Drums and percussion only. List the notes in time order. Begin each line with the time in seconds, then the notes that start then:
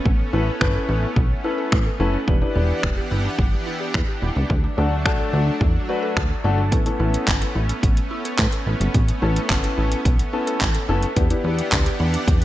0.06 kick
0.61 finger snap, kick
1.16 kick
1.72 finger snap, kick
2.28 kick
2.83 finger snap, kick
3.39 kick
3.94 finger snap, kick
4.50 kick
5.06 finger snap, kick
5.61 kick
6.17 finger snap, kick
6.72 kick, closed hi-hat
6.86 closed hi-hat
7.14 closed hi-hat
7.28 kick, clap, closed hi-hat
7.42 closed hi-hat
7.69 closed hi-hat
7.83 kick, closed hi-hat
7.97 closed hi-hat
8.25 closed hi-hat
8.39 kick, clap, closed hi-hat
8.52 closed hi-hat
8.81 closed hi-hat
8.94 kick, closed hi-hat
9.08 closed hi-hat
9.36 closed hi-hat
9.50 kick, clap, closed hi-hat
9.64 closed hi-hat
9.92 closed hi-hat
10.05 kick, closed hi-hat
10.19 closed hi-hat
10.47 closed hi-hat
10.61 kick, clap, closed hi-hat
10.74 closed hi-hat
11.03 closed hi-hat
11.16 kick, closed hi-hat
11.30 closed hi-hat
11.59 closed hi-hat
11.72 kick, clap, closed hi-hat
11.86 closed hi-hat
12.14 closed hi-hat
12.28 kick, closed hi-hat
12.42 closed hi-hat